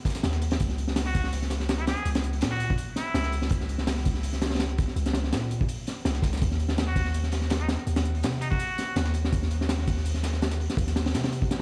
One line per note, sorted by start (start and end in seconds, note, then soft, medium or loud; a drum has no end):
0.05 kick medium
0.05 snare medium
0.05 open hi-hat medium
0.05 tambourine medium
0.10 snare medium
0.10 tambourine medium
0.15 snare loud
0.15 snare soft
0.15 tambourine medium
0.23 0.58 D#2 loud
0.23 snare loud
0.23 open hi-hat medium
0.23 tambourine medium
0.33 snare loud
0.33 closed hi-hat soft
0.42 snare medium
0.42 open hi-hat medium
0.42 tambourine medium
0.51 snare loud
0.51 open hi-hat medium
0.60 1.95 C#2 loud
0.60 kick loud
0.60 open hi-hat medium
0.60 tambourine medium
0.69 snare soft
0.78 open hi-hat medium
0.78 tambourine medium
0.88 snare medium
0.96 snare loud
0.96 open hi-hat loud
0.96 tambourine medium
1.06 1.28 F#4 medium
1.06 snare soft
1.15 kick medium
1.15 open hi-hat medium
1.15 tambourine medium
1.24 snare soft
1.33 open hi-hat medium
1.33 tambourine medium
1.42 snare soft
1.50 snare soft
1.50 snare medium
1.50 open hi-hat medium
1.50 tambourine medium
1.60 snare soft
1.69 snare loud
1.69 open hi-hat medium
1.69 tambourine medium
1.79 1.86 E4 medium
1.79 closed hi-hat soft
1.87 2.09 G#4 medium
1.87 snare loud
1.87 open hi-hat medium
1.87 tambourine medium
1.97 closed hi-hat soft
2.05 2.43 C#2 loud
2.05 open hi-hat medium
2.05 tambourine medium
2.15 snare loud
2.15 closed hi-hat soft
2.15 open hi-hat medium
2.23 closed hi-hat soft
2.23 tambourine medium
2.33 open hi-hat medium
2.41 2.77 A#2 medium
2.41 snare loud
2.41 open hi-hat loud
2.41 tambourine medium
2.51 2.73 F#4 loud
2.51 snare medium
2.60 open hi-hat medium
2.60 tambourine medium
2.70 kick medium
2.78 open hi-hat medium
2.78 tambourine medium
2.96 3.33 E4 loud
2.96 snare medium
2.96 open hi-hat medium
2.96 tambourine medium
3.14 3.49 C#2 loud
3.14 snare loud
3.14 open hi-hat loud
3.14 tambourine medium
3.24 snare loud
3.24 closed hi-hat soft
3.32 snare medium
3.32 open hi-hat medium
3.32 tambourine medium
3.42 snare medium
3.49 4.86 C#2 loud
3.49 kick loud
3.49 open hi-hat loud
3.49 tambourine medium
3.60 snare soft
3.69 open hi-hat medium
3.69 tambourine medium
3.78 snare medium
3.87 snare loud
3.87 open hi-hat loud
3.87 tambourine medium
3.96 snare medium
4.05 kick loud
4.05 open hi-hat medium
4.05 tambourine medium
4.14 snare soft
4.23 open hi-hat loud
4.23 tambourine medium
4.33 snare soft
4.41 snare medium
4.41 open hi-hat medium
4.41 tambourine medium
4.46 snare loud
4.46 open hi-hat medium
4.50 snare medium
4.50 open hi-hat medium
4.54 snare medium
4.54 open hi-hat medium
4.60 snare loud
4.60 open hi-hat medium
4.60 tambourine medium
4.69 closed hi-hat soft
4.78 kick loud
4.78 open hi-hat medium
4.78 tambourine medium
4.88 snare soft
4.96 5.34 C#2 loud
4.96 open hi-hat medium
4.96 tambourine medium
5.06 snare medium
5.06 closed hi-hat soft
5.13 snare loud
5.13 open hi-hat medium
5.13 tambourine medium
5.24 snare soft
5.32 5.68 A#2 medium
5.32 snare loud
5.32 open hi-hat medium
5.32 tambourine medium
5.42 snare medium
5.51 open hi-hat medium
5.51 tambourine medium
5.61 kick medium
5.69 open hi-hat medium
5.69 tambourine medium
5.87 snare soft
5.87 open hi-hat medium
5.87 tambourine medium
6.05 6.40 C#2 loud
6.05 snare loud
6.05 open hi-hat loud
6.05 tambourine medium
6.15 snare loud
6.15 closed hi-hat soft
6.23 kick loud
6.23 snare loud
6.23 open hi-hat medium
6.23 tambourine medium
6.33 snare medium
6.33 snare soft
6.33 tambourine medium
6.37 snare medium
6.37 tambourine medium
6.42 7.77 D#2 loud
6.42 kick loud
6.42 open hi-hat loud
6.42 tambourine medium
6.51 snare soft
6.59 open hi-hat medium
6.59 tambourine medium
6.69 snare medium
6.78 snare loud
6.78 open hi-hat medium
6.78 tambourine medium
6.87 7.09 F#4 medium
6.87 snare soft
6.96 kick loud
6.96 open hi-hat medium
6.96 tambourine medium
7.05 snare soft
7.14 open hi-hat medium
7.14 tambourine medium
7.23 snare soft
7.32 snare medium
7.32 snare soft
7.32 open hi-hat medium
7.32 tambourine medium
7.41 snare soft
7.50 snare loud
7.50 open hi-hat medium
7.50 tambourine medium
7.60 7.67 D#4 medium
7.60 closed hi-hat soft
7.68 snare loud
7.68 open hi-hat medium
7.68 tambourine medium
7.79 closed hi-hat soft
7.87 8.25 D#2 loud
7.87 open hi-hat medium
7.87 tambourine medium
7.96 snare loud
7.96 closed hi-hat soft
7.96 open hi-hat medium
8.05 closed hi-hat soft
8.05 tambourine medium
8.15 open hi-hat medium
8.23 8.58 C3 medium
8.23 snare loud
8.23 open hi-hat medium
8.23 tambourine medium
8.33 snare medium
8.41 8.49 D#4 loud
8.41 open hi-hat medium
8.41 tambourine medium
8.50 9.02 F#4 loud
8.50 kick loud
8.59 open hi-hat loud
8.59 tambourine medium
8.78 snare soft
8.78 open hi-hat medium
8.78 tambourine medium
8.96 9.31 D#2 loud
8.96 snare loud
8.96 open hi-hat medium
8.96 tambourine medium
9.06 snare loud
9.06 closed hi-hat soft
9.14 snare medium
9.14 open hi-hat medium
9.14 tambourine medium
9.25 snare medium
9.33 10.68 D#2 loud
9.33 kick loud
9.33 open hi-hat medium
9.33 tambourine medium
9.43 snare soft
9.51 open hi-hat medium
9.51 tambourine medium
9.61 snare medium
9.69 snare loud
9.69 open hi-hat medium
9.69 tambourine medium
9.79 snare medium
9.87 kick medium
9.87 open hi-hat medium
9.87 tambourine medium
9.97 snare soft
10.05 open hi-hat loud
10.05 tambourine medium
10.14 snare soft
10.23 snare soft
10.23 snare loud
10.23 open hi-hat medium
10.23 tambourine medium
10.33 snare soft
10.42 snare loud
10.42 open hi-hat medium
10.42 tambourine medium
10.51 snare loud
10.51 closed hi-hat soft
10.51 tambourine medium
10.60 snare soft
10.60 open hi-hat medium
10.70 snare medium
10.70 tambourine medium
10.77 11.16 D#2 loud
10.77 kick loud
10.77 open hi-hat medium
10.77 tambourine medium
10.87 snare soft
10.87 closed hi-hat soft
10.96 snare loud
10.96 open hi-hat medium
10.96 tambourine medium
11.06 snare loud
11.06 open hi-hat medium
11.14 11.49 C3 medium
11.14 snare loud
11.14 open hi-hat medium
11.14 tambourine medium
11.23 snare loud
11.23 snare medium
11.23 open hi-hat medium
11.32 open hi-hat medium
11.32 tambourine medium
11.42 kick medium
11.51 snare loud
11.51 open hi-hat medium
11.51 tambourine medium